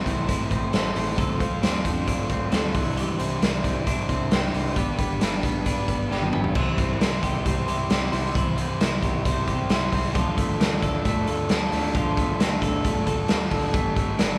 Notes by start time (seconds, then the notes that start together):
Already playing: E3 A3 C4 E4 A4 C5
0.06 C2 C4, kick, closed hi-hat
0.27 A2 E3 A3 C4 E4 C5, kick, closed hi-hat
0.51 A1 C4, kick, closed hi-hat
0.73 A1 A3 C4 E4 A4 C5, snare, closed hi-hat
0.96 A1 C4, open hi-hat
1.17 D2 D3 F3 A3 C4 F4 A4 C5, kick, closed hi-hat
1.39 D2 C4 F4 C5, kick, closed hi-hat
1.62 D2 A3 C4 D4 F4 C5, snare, closed hi-hat
1.84 F2 C4 F4 C5, kick, closed hi-hat
2.07 D3 A3 C4 D4 F4 C5, kick, closed hi-hat
2.29 D2 C4, kick, closed hi-hat
2.51 D2 A3 C4 F4 A4 C5, snare, closed hi-hat
2.74 C2 C3 E3 G3 D4 E4 C5, kick, open hi-hat
2.97 E3 G4, closed hi-hat
3.18 C2 G3 C4 D4 E4 C5, closed hi-hat
3.41 C2 G3 D4 E4 C5, snare, closed hi-hat
3.64 C2 C4, kick, closed hi-hat
3.85 C3 E3 G3 D4 E4 C5, kick, closed hi-hat
4.09 C2 C4, kick, closed hi-hat
4.31 C2 G3 D4 E4 G4 C5, snare, closed hi-hat
4.54 C2 C4, open hi-hat
4.75 G1 G3 B3 D4 G4 B4, kick, closed hi-hat
4.97 G1 B3 D4 G4 B4, kick, closed hi-hat
5.20 G1 G3 D4 G4 B4, snare, closed hi-hat
5.43 B1 B3, kick, closed hi-hat
5.66 G3 D4 G4 B4, kick, closed hi-hat
5.88 G1 B3, kick, closed hi-hat
6.09 G1 G3 D4 G4 B4, snare
6.22 high tom
6.33 G1 B3, mid tom
6.44 floor tom
6.54 C2 C3 E3 G3 C4 E4 C5, kick, crash
6.78 C4, kick, closed hi-hat
7.00 C2 G3 C4 D4 E4 C5, snare, closed hi-hat
7.13 E4
7.23 C2 G4, kick, closed hi-hat
7.44 C2 G3 C4 E4 C5, kick, closed hi-hat
7.66 C2 G3 C4 E4 G4 C5, closed hi-hat
7.90 C2 G3 C4 D4 E4 C5, snare, closed hi-hat
8.02 E4
8.12 C2 G3 C4 E4 C5, open hi-hat
8.35 C2 C3 E3 G3 C4 E4 C5, kick, closed hi-hat
8.57 C4, closed hi-hat
8.80 C2 G3 C4 E4 C5, snare, closed hi-hat
9.03 C2 G4, kick, closed hi-hat
9.25 C2 G3 C4 E4 C5, kick, closed hi-hat
9.47 C2 G3 C4 E4 G4 C5, kick, closed hi-hat
9.69 C2 G3 C4 E4, snare, closed hi-hat
9.74 C5
9.92 C2 G3 C4 E4 C5, kick, open hi-hat
10.14 D2 D3 F3 A3 D4 F4 A4, kick, closed hi-hat
10.37 A3, kick, closed hi-hat
10.60 D2 A3 D4 F4 A4, snare, closed hi-hat
10.82 D2 A4, kick, closed hi-hat
11.05 D2 A3 D4 F4 A4, kick, closed hi-hat
11.27 D2 F4 A4, closed hi-hat
11.32 D4
11.49 D2 A3 D4 F4, snare, closed hi-hat
11.54 A4
11.72 D2 A3 D4 F4 A4, open hi-hat
11.95 D2 D3 F3 A3 D4 F4 A4, kick, closed hi-hat
12.17 A3, kick, closed hi-hat
12.40 D2 A3 D4 F4 A4, snare, closed hi-hat
12.62 D2 A4, kick, closed hi-hat
12.84 D2 A3 D4 F4 A4, kick, closed hi-hat
13.06 D2 D4 F4 A4, kick, closed hi-hat
13.28 D2 A3 D4 F4 A4, snare, closed hi-hat
13.51 D2 A3 D4 F4 A4, kick, open hi-hat
13.73 G1 G3 A3 D4 G4 A4, kick, closed hi-hat
13.95 A3, kick, closed hi-hat
14.18 G1 G3 D4 G4 A4, snare, closed hi-hat